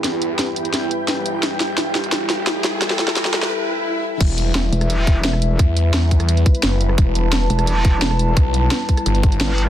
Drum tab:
CC |----------------|----------------|----------------|x---------------|
HH |x-x-x-xxx-x-x-x-|x-x-x-xxx-x-x-x-|x-x-x-xx--------|x-x-x-xxx-x-x-x-|
SD |o---o---o---o---|o-o-o-o-o-o-o-o-|oooooooo--------|----o--r----or--|
BD |----------------|----------------|----------------|o---------o-----|

CC |----------------|----------------|----------------|
HH |x-x-x-xxxxxxx-x-|x-x-x-xxx-x-x-x-|x-x-x-xxxxxxx-x-|
SD |----o--r----o--r|----o--r----or--|----o--r----o---|
BD |o-----o---o-----|o---------o-----|o-----o---o-----|